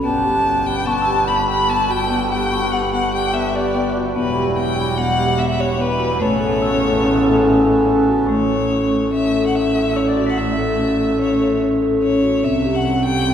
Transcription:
Already playing: glockenspiel B5
0.03 double bass G1, harmonium D3 B3 G4, marimba B3, violin A5
0.24 marimba G4
0.45 marimba B3
0.66 marimba G4, violin G5
0.85 marimba B3, violin A5, glockenspiel C#6
1.02 glockenspiel E6
1.06 marimba G4
1.27 marimba B3, violin B5
1.48 marimba G4, violin B5
1.69 marimba B3, violin A5
1.89 marimba F#4, violin G5
2.10 marimba B3, glockenspiel A5
2.31 marimba G4, violin G5
2.51 marimba B3, glockenspiel C#6
2.72 marimba G4, violin F#5
2.93 marimba B3, violin F#5
3.13 marimba G4, violin G5
3.34 marimba B3, violin E5
3.55 marimba G4, violin D5
3.75 marimba B3
3.96 marimba F#4
4.15 double bass E1, harmonium E3 F#3 G3, marimba B3, violin B4
4.36 marimba G4
4.57 marimba B3, violin G5
4.77 marimba G4
4.97 marimba B3, violin F#5
5.18 marimba G4
5.38 marimba B3, violin E5
5.49 violin E5
5.58 marimba G4, violin C#5
5.78 marimba B3, violin B4
5.99 marimba F#4
6.20 double bass A1, harmonium C#3 B3 A4, marimba A3, violin C#5
6.40 marimba A4
6.61 marimba C#4, glockenspiel E6
6.82 marimba A4
7.03 marimba C#4
7.23 marimba A4
7.44 marimba C#4
7.65 marimba A4
7.86 marimba C#4
8.08 marimba F#4
8.27 double bass A1, marimba A3, violin C#5, glockenspiel C#6
8.50 marimba A4
8.70 marimba C#4
8.92 marimba A4
9.13 marimba C#4, violin E5
9.34 marimba A4
9.47 violin F#5
9.54 marimba C#4, violin E5
9.75 marimba A4
9.93 marimba C#4, violin C#5, glockenspiel E6
10.07 violin D5, glockenspiel A6
10.16 marimba F#4
10.26 violin F#5, glockenspiel B6
10.37 marimba A3, violin E5
10.57 marimba A4
10.78 marimba C#4
10.99 marimba A4
11.20 marimba C#4, violin C#5
11.40 marimba A4
11.61 marimba C#4
11.82 marimba A4
12.02 marimba C#4, violin C#5
12.23 marimba F#4
12.43 double bass C2, marimba C4, violin E5
12.64 marimba G4
12.74 violin F#5
12.85 marimba C4
13.05 marimba G4, violin G5
13.26 marimba C4

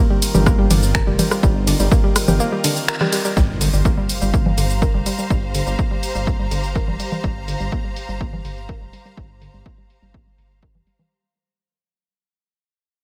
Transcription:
Already playing: ambient pad D#3 C4 F4 A#4
0.10 synth pluck G3 G4
0.22 open hi-hat, ride, shaker
0.35 detuned saw bass G1, synth pluck G3 G4, low conga, shaker
0.46 synth pluck A#3 A#4, kick, cross-stick, shaker
0.59 synth pluck G3 G4
0.71 detuned saw bass G1, synth pluck D3 D4, open hi-hat, ride, low conga, shaker
0.83 shaker
0.95 synth pluck A#4 A#5, finger snap, kick, shaker
1.07 detuned saw bass F1, synth pluck G3 G4
1.19 synth pluck G3 G4, open hi-hat, ride, low conga, shaker
1.31 synth pluck G3 G4, cross-stick, shaker
1.43 detuned saw bass G1, synth pluck G3 G4, kick, shaker
1.67 synth pluck D3 D4, open hi-hat, ride, shaker
1.80 detuned saw bass G1, synth pluck G3 G4, shaker
1.92 synth pluck A#3 A#4, kick, shaker
2.04 synth pluck G3 G4
2.16 cross-stick, open hi-hat, ride, shaker
2.28 detuned saw bass G1, synth pluck G3 G4, low conga, shaker
2.40 synth pluck A#3 A#4, shaker
2.52 synth pluck G3 G4
2.64 synth pluck D3 D4, open hi-hat, ride, shaker
2.76 shaker
2.88 synth pluck A#4 A#5, finger snap, shaker
3.01 synth pluck G3 G4, cross-stick, low conga
3.13 synth pluck G3 G4, open hi-hat, ride, shaker
3.25 synth pluck G3 G4, shaker
3.37 detuned saw bass G1, synth pluck G3, string section G4, kick, impact, shaker
3.54 string section C5
3.61 synth pluck D3, open hi-hat, shaker
3.73 detuned saw bass G1, synth pluck G3, shaker
3.85 synth pluck A#3, kick, shaker
3.95 synth pluck G3, string section F5
4.09 open hi-hat, shaker
4.22 detuned saw bass G1, synth pluck G3, shaker
4.34 synth pluck A#3, kick, shaker
4.43 synth pluck G3, string section A#5, low conga
4.58 detuned saw bass G1, synth pluck D3, open hi-hat, shaker
4.70 shaker
4.82 synth pluck A#4, kick, shaker
4.94 detuned saw bass F1, synth pluck G3
5.06 synth pluck G3, open hi-hat, shaker
5.18 synth pluck G3, shaker
5.30 detuned saw bass G1, synth pluck G3, kick, shaker
5.55 synth pluck D3, open hi-hat, shaker
5.67 detuned saw bass G1, synth pluck G3, shaker
5.79 synth pluck A#3, kick, shaker
5.91 synth pluck G3
6.03 open hi-hat, shaker
6.15 detuned saw bass G1, synth pluck G3, shaker
6.27 synth pluck A#3, kick, shaker
6.39 synth pluck G3
6.51 detuned saw bass G1, synth pluck D3, open hi-hat, shaker
6.64 shaker
6.75 synth pluck A#4, kick, shaker
6.88 detuned saw bass F1, synth pluck G3, low conga
7.00 synth pluck G3, open hi-hat, shaker
7.12 synth pluck G3, low conga, shaker
7.24 detuned saw bass G1, synth pluck G3, kick, shaker
7.48 synth pluck D3, open hi-hat, shaker
7.60 detuned saw bass G1, synth pluck G3, shaker
7.72 synth pluck A#3, kick, shaker
7.84 synth pluck G3
7.96 open hi-hat, shaker
8.09 detuned saw bass G1, synth pluck G3, shaker
8.21 synth pluck A#3, kick, shaker
8.33 synth pluck G3, low conga
8.45 detuned saw bass G1, synth pluck D3, open hi-hat, shaker
8.57 shaker
8.69 synth pluck A#4, kick, shaker
8.81 detuned saw bass F1, synth pluck G3
8.93 synth pluck G3, open hi-hat, shaker
9.05 synth pluck G3, shaker
9.17 detuned saw bass G1, synth pluck G3, kick, shaker
9.42 synth pluck D3, open hi-hat, shaker
9.54 detuned saw bass G1, synth pluck G3, shaker
9.66 synth pluck A#3, kick, shaker
9.78 synth pluck G3
9.90 open hi-hat, shaker
10.02 detuned saw bass G1, synth pluck G3, shaker
10.14 synth pluck A#3, kick, shaker
10.27 synth pluck G3
10.38 detuned saw bass G1, synth pluck D3, open hi-hat, shaker
10.51 shaker
10.63 synth pluck A#4, kick
10.75 detuned saw bass F1, synth pluck G3, low conga
10.87 synth pluck G3, open hi-hat, shaker
10.99 synth pluck G3, low conga, shaker

